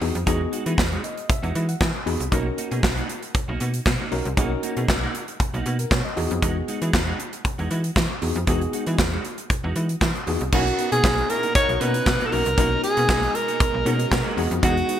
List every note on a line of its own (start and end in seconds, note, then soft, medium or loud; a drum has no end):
0.01 0.12 E2 medium
0.01 0.17 B3 medium
0.01 0.17 D#4 medium
0.01 0.17 F#4 medium
0.01 0.17 G#4 medium
0.01 open hi-hat medium
0.15 0.24 F2 loud
0.15 muted clean electric guitar stroke soft
0.15 closed hi-hat soft
0.26 0.47 E2 loud
0.26 0.40 G#3 medium
0.26 0.87 B3 medium
0.26 0.88 D#4 medium
0.26 0.41 D#4 loud
0.26 0.88 F#4 medium
0.26 0.41 F#4 loud
0.26 0.88 G#4 loud
0.26 kick medium
0.26 closed hi-hat medium
0.52 0.63 G#3 medium
0.52 0.63 D#4 medium
0.52 0.64 F#4 medium
0.52 closed hi-hat medium
0.66 0.76 E3 medium
0.66 0.76 G#3 medium
0.66 0.76 D#4 medium
0.66 0.76 G#4 medium
0.66 closed hi-hat medium
0.78 0.98 E2 loud
0.78 kick loud
0.78 snare loud
0.78 clap medium
0.91 1.02 G#3 medium
0.91 1.03 D#4 medium
0.91 1.03 F#4 medium
0.91 closed hi-hat soft
1.03 1.28 D#5 medium
1.03 muted clean electric guitar stroke soft
1.03 closed hi-hat medium
1.17 muted clean electric guitar stroke soft
1.17 closed hi-hat soft
1.29 1.66 E5 medium
1.29 muted clean electric guitar stroke soft
1.29 kick loud
1.29 closed hi-hat loud
1.42 1.52 E2 loud
1.42 1.53 G#3 medium
1.42 1.54 D#4 medium
1.42 1.55 F#4 medium
1.42 closed hi-hat soft
1.55 1.75 E3 loud
1.55 1.66 G#3 medium
1.55 1.66 D#4 medium
1.55 1.66 F#4 medium
1.55 closed hi-hat medium
1.69 1.80 F#5 medium
1.69 closed hi-hat medium
1.81 1.91 E3 loud
1.81 2.05 G#5 medium
1.81 kick loud
1.81 snare loud
1.81 clap medium
1.94 muted clean electric guitar stroke soft
2.06 2.17 E2 medium
2.06 2.22 B3 medium
2.06 2.22 D#4 medium
2.06 2.22 F#4 medium
2.06 2.22 G#4 medium
2.06 2.30 B5 medium
2.06 open hi-hat medium
2.20 2.29 C2 medium
2.20 muted clean electric guitar stroke soft
2.20 closed hi-hat medium
2.32 2.52 B1 loud
2.32 2.46 A#3 medium
2.32 2.93 C#4 medium
2.32 2.93 D#4 medium
2.32 2.46 D#4 medium
2.32 2.93 F#4 medium
2.32 2.46 F#4 loud
2.32 2.93 A#4 medium
2.32 kick medium
2.32 closed hi-hat loud
2.57 2.68 A#3 medium
2.57 2.69 D#4 medium
2.57 2.69 F#4 medium
2.57 closed hi-hat medium
2.71 2.81 B2 medium
2.71 2.81 A#3 medium
2.71 2.81 D#4 medium
2.71 2.81 G#4 medium
2.71 closed hi-hat soft
2.83 3.03 B1 loud
2.83 muted clean electric guitar stroke soft
2.83 kick loud
2.83 snare loud
2.83 clap medium
2.97 3.08 A#3 medium
2.97 3.08 D#4 medium
2.97 3.09 F#4 medium
2.97 closed hi-hat soft
3.09 muted clean electric guitar stroke soft
3.09 closed hi-hat medium
3.23 muted clean electric guitar stroke soft
3.23 closed hi-hat medium
3.35 kick loud
3.35 closed hi-hat medium
3.48 3.58 B1 medium
3.48 3.59 A#3 medium
3.48 3.60 D#4 medium
3.48 3.60 F#4 medium
3.60 3.80 B2 loud
3.60 3.71 A#3 medium
3.60 3.71 D#4 medium
3.60 3.72 F#4 medium
3.60 closed hi-hat medium
3.74 muted clean electric guitar stroke soft
3.74 closed hi-hat medium
3.86 3.96 B2 loud
3.86 kick loud
3.86 snare loud
3.86 clap medium
4.00 4.11 A#3 medium
4.00 4.11 D#4 medium
4.00 4.12 F#4 medium
4.11 4.22 B1 medium
4.11 4.27 C#4 medium
4.11 4.27 D#4 medium
4.11 4.27 F#4 medium
4.11 4.28 A#4 loud
4.11 muted clean electric guitar stroke medium
4.11 open hi-hat medium
4.25 4.35 C2 loud
4.25 muted clean electric guitar stroke soft
4.25 closed hi-hat soft
4.37 4.57 B1 loud
4.37 4.51 A#3 loud
4.37 4.98 C#4 medium
4.37 4.98 D#4 medium
4.37 4.51 D#4 loud
4.37 4.98 F#4 medium
4.37 4.52 F#4 loud
4.37 4.44 G#4 medium
4.37 kick loud
4.37 closed hi-hat loud
4.44 5.01 A#4 loud
4.63 4.74 A#3 medium
4.63 4.74 D#4 medium
4.63 4.74 F#4 medium
4.63 closed hi-hat medium
4.77 4.86 B2 medium
4.77 4.87 A#3 medium
4.77 4.87 D#4 medium
4.77 4.86 G#4 medium
4.77 closed hi-hat soft
4.88 5.08 B1 loud
4.88 kick loud
4.88 snare loud
4.88 clap medium
5.02 5.14 A#3 medium
5.02 5.14 D#4 medium
5.02 5.14 F#4 medium
5.15 muted clean electric guitar stroke soft
5.15 closed hi-hat medium
5.28 muted clean electric guitar stroke soft
5.28 closed hi-hat soft
5.40 muted clean electric guitar stroke soft
5.40 kick loud
5.40 closed hi-hat medium
5.54 5.63 B1 loud
5.54 5.65 A#3 medium
5.54 5.66 D#4 medium
5.54 5.66 F#4 medium
5.54 closed hi-hat soft
5.66 5.85 B2 loud
5.66 5.76 A#3 medium
5.66 5.77 D#4 medium
5.66 5.77 F#4 medium
5.66 closed hi-hat medium
5.79 5.91 A#4 medium
5.79 closed hi-hat medium
5.91 6.02 B2 loud
5.91 6.04 C#5 medium
5.91 muted clean electric guitar stroke soft
5.91 kick loud
5.91 snare loud
5.91 clap medium
6.05 6.29 D#5 medium
6.05 muted clean electric guitar stroke soft
6.16 6.28 E2 loud
6.16 6.99 B3 medium
6.16 6.99 D#4 medium
6.16 6.99 F#4 medium
6.16 6.99 G#4 loud
6.16 open hi-hat medium
6.31 6.40 F2 loud
6.31 muted clean electric guitar stroke medium
6.31 closed hi-hat soft
6.42 6.62 E2 loud
6.42 6.56 G#3 medium
6.42 6.56 D#4 medium
6.42 6.57 F#4 medium
6.42 kick loud
6.42 closed hi-hat loud
6.68 6.79 G#3 medium
6.68 6.79 D#4 medium
6.68 6.79 F#4 medium
6.68 closed hi-hat medium
6.81 6.91 E3 medium
6.81 6.92 G#3 medium
6.81 6.91 D#4 medium
6.81 6.91 G#4 medium
6.81 closed hi-hat medium
6.93 7.13 E2 loud
6.93 kick loud
6.93 snare loud
6.93 clap medium
7.07 7.18 G#3 medium
7.07 7.18 D#4 medium
7.07 7.19 F#4 medium
7.19 muted clean electric guitar stroke soft
7.19 closed hi-hat medium
7.33 muted clean electric guitar stroke soft
7.33 closed hi-hat medium
7.45 muted clean electric guitar stroke soft
7.45 kick loud
7.45 closed hi-hat medium
7.58 7.68 E2 medium
7.58 7.69 G#3 medium
7.58 7.70 D#4 medium
7.58 7.71 F#4 medium
7.58 closed hi-hat soft
7.70 7.90 E3 medium
7.70 7.81 G#3 medium
7.70 7.81 D#4 medium
7.70 7.82 F#4 medium
7.70 closed hi-hat medium
7.84 muted clean electric guitar stroke soft
7.84 closed hi-hat medium
7.96 8.07 E3 medium
7.96 kick loud
7.96 snare loud
7.96 clap medium
8.09 muted clean electric guitar stroke soft
8.21 8.33 E2 medium
8.21 8.37 B3 medium
8.21 8.37 D#4 medium
8.21 8.38 F#4 medium
8.21 8.38 G#4 medium
8.21 open hi-hat medium
8.35 8.45 F2 loud
8.35 muted clean electric guitar stroke medium
8.35 closed hi-hat soft
8.47 8.67 E2 loud
8.47 8.61 G#3 medium
8.47 9.08 B3 medium
8.47 9.08 D#4 medium
8.47 8.61 D#4 medium
8.47 9.08 F#4 medium
8.47 8.62 F#4 loud
8.47 9.08 G#4 loud
8.47 kick loud
8.47 closed hi-hat loud
8.61 closed hi-hat soft
8.73 8.84 G#3 medium
8.73 8.84 D#4 medium
8.73 8.84 F#4 medium
8.73 closed hi-hat medium
8.86 8.96 E3 medium
8.86 8.97 G#3 medium
8.86 8.96 D#4 medium
8.86 8.96 G#4 medium
8.86 closed hi-hat medium
8.98 9.18 E2 loud
8.98 muted clean electric guitar stroke soft
8.98 kick loud
8.98 snare loud
8.98 clap medium
9.12 9.23 G#3 medium
9.12 9.24 D#4 medium
9.12 9.24 F#4 medium
9.24 muted clean electric guitar stroke soft
9.24 closed hi-hat medium
9.38 muted clean electric guitar stroke medium
9.38 closed hi-hat medium
9.50 muted clean electric guitar stroke soft
9.50 kick loud
9.50 closed hi-hat medium
9.64 9.73 E2 loud
9.64 9.74 G#3 medium
9.64 9.75 D#4 medium
9.64 9.76 F#4 medium
9.75 9.96 E3 medium
9.75 9.86 G#3 medium
9.75 9.87 D#4 medium
9.75 9.87 F#4 medium
9.75 closed hi-hat medium
9.89 closed hi-hat medium
10.01 10.12 E3 loud
10.01 muted clean electric guitar stroke soft
10.01 kick loud
10.01 snare loud
10.01 clap medium
10.15 muted clean electric guitar stroke soft
10.15 closed hi-hat soft
10.27 10.38 E2 medium
10.27 10.43 B3 medium
10.27 10.43 D#4 medium
10.27 10.43 F#4 medium
10.27 10.43 G#4 medium
10.27 open hi-hat medium
10.41 10.50 C2 medium
10.41 muted clean electric guitar stroke medium
10.41 closed hi-hat medium
10.52 10.72 B1 loud
10.52 12.56 A#2 medium
10.52 14.34 B2 medium
10.52 10.66 A#3 medium
10.52 11.13 C#4 medium
10.52 10.63 C#4 loud
10.52 11.13 D#4 medium
10.52 14.34 D#4 loud
10.52 10.66 D#4 loud
10.52 10.63 E4 loud
10.52 11.13 F#4 medium
10.52 10.89 F#4 loud
10.52 10.65 F#4 loud
10.52 10.64 G#4 loud
10.52 11.14 A#4 medium
10.52 kick loud
10.52 crash medium
10.67 muted clean electric guitar stroke medium
10.67 closed hi-hat soft
10.78 10.89 B3 medium
10.78 10.89 D#4 medium
10.78 10.89 F#4 medium
10.78 muted clean electric guitar stroke soft
10.78 closed hi-hat medium
10.92 11.01 B2 medium
10.92 11.02 A#3 medium
10.92 11.02 D#4 medium
10.92 11.01 G#4 medium
10.92 11.31 G#4 loud
10.92 closed hi-hat medium
11.04 11.24 B1 loud
11.04 11.17 A#3 medium
11.04 11.17 D#4 loud
11.04 11.16 F#4 loud
11.04 kick loud
11.04 snare loud
11.04 clap medium
11.17 11.27 B3 medium
11.17 11.27 D#4 medium
11.17 11.27 F#4 medium
11.17 muted clean electric guitar stroke soft
11.17 closed hi-hat soft
11.29 11.41 C#4 loud
11.29 11.40 E4 medium
11.29 11.41 G#4 loud
11.29 11.54 A#4 loud
11.29 muted clean electric guitar stroke soft
11.29 closed hi-hat medium
11.43 11.53 A#3 medium
11.43 11.53 D#4 medium
11.43 11.52 F#4 medium
11.43 closed hi-hat medium
11.55 11.76 D#4 loud
11.55 11.76 F#4 loud
11.55 11.76 A#4 loud
11.55 11.74 C#5 loud
11.55 kick loud
11.55 closed hi-hat loud
11.68 11.78 B1 loud
11.68 muted clean electric guitar stroke soft
11.68 closed hi-hat soft
11.74 11.82 C#5 medium
11.80 12.01 B2 loud
11.80 11.94 A#3 medium
11.80 12.11 C#4 medium
11.80 11.94 D#4 loud
11.80 12.11 D#4 medium
11.80 12.11 F#4 medium
11.80 11.93 F#4 loud
11.80 12.27 B4 loud
11.80 12.12 A#5 medium
11.80 closed hi-hat medium
11.94 muted clean electric guitar stroke soft
11.94 closed hi-hat medium
12.06 12.17 B2 loud
12.06 kick loud
12.06 snare loud
12.06 clap medium
12.20 12.31 A#3 medium
12.20 12.31 D#4 medium
12.20 12.32 F#4 medium
12.20 closed hi-hat soft
12.26 12.33 A4 medium
12.32 12.43 B1 medium
12.32 12.43 A#3 medium
12.32 12.48 C#4 medium
12.32 12.48 D#4 medium
12.32 12.43 D#4 medium
12.32 12.48 F#4 medium
12.32 12.43 F#4 medium
12.32 12.83 A#4 loud
12.32 12.48 A#4 medium
12.32 open hi-hat medium
12.46 12.55 C2 loud
12.46 closed hi-hat medium
12.57 12.78 B1 loud
12.57 15.00 G#3 medium
12.57 12.71 A#3 loud
12.57 13.18 C#4 medium
12.57 13.18 D#4 medium
12.57 12.71 D#4 medium
12.57 13.19 F#4 medium
12.57 12.70 F#4 loud
12.57 13.19 A#4 medium
12.57 kick loud
12.57 closed hi-hat loud
12.71 muted clean electric guitar stroke medium
12.83 13.36 G#4 loud
12.83 muted clean electric guitar stroke soft
12.83 closed hi-hat medium
12.97 13.06 B2 loud
12.97 13.07 A#3 medium
12.97 13.07 D#4 medium
12.97 13.06 G#4 medium
12.97 closed hi-hat medium
13.09 13.29 B1 loud
13.09 13.23 A#3 medium
13.09 13.22 D#4 medium
13.09 13.21 F#4 medium
13.09 kick loud
13.09 snare loud
13.09 clap medium
13.22 muted clean electric guitar stroke medium
13.22 closed hi-hat soft
13.34 14.37 A#4 medium
13.34 muted clean electric guitar stroke medium
13.34 closed hi-hat medium
13.48 13.58 A#3 medium
13.48 13.58 D#4 medium
13.48 13.58 F#4 medium
13.48 closed hi-hat medium
13.60 kick loud
13.60 closed hi-hat medium
13.73 13.83 B1 medium
13.73 muted clean electric guitar stroke medium
13.85 14.06 B2 loud
13.85 13.99 A#3 medium
13.85 14.16 C#4 medium
13.85 13.99 D#4 medium
13.85 14.16 D#4 medium
13.85 14.16 F#4 medium
13.85 13.98 F#4 medium
13.85 14.17 A#4 medium
13.85 closed hi-hat medium
13.99 muted clean electric guitar stroke soft
13.99 closed hi-hat medium
14.12 14.22 B2 loud
14.12 muted clean electric guitar stroke soft
14.12 kick loud
14.12 snare loud
14.12 clap medium
14.25 14.37 A#3 medium
14.25 14.37 D#4 medium
14.25 14.37 F#4 medium
14.37 14.48 E2 medium
14.37 15.00 D#3 medium
14.37 14.48 G#3 medium
14.37 15.00 B3 medium
14.37 15.00 D#4 medium
14.37 14.48 D#4 medium
14.37 15.00 F#4 loud
14.37 15.00 F#4 medium
14.37 14.49 F#4 medium
14.37 15.00 G#4 medium
14.37 open hi-hat medium
14.51 14.60 F2 loud
14.51 muted clean electric guitar stroke medium
14.51 closed hi-hat medium
14.62 14.83 E2 loud
14.62 14.76 G#3 loud
14.62 14.74 B3 loud
14.62 14.74 D#4 loud
14.62 14.76 D#4 medium
14.62 15.00 F#4 loud
14.62 14.75 F#4 medium
14.62 14.74 G#4 loud
14.62 kick loud
14.62 closed hi-hat loud
14.76 muted clean electric guitar stroke soft
14.76 closed hi-hat soft
14.88 14.99 B3 medium
14.88 14.99 D#4 medium
14.88 14.99 F#4 medium
14.88 muted clean electric guitar stroke soft
14.88 closed hi-hat medium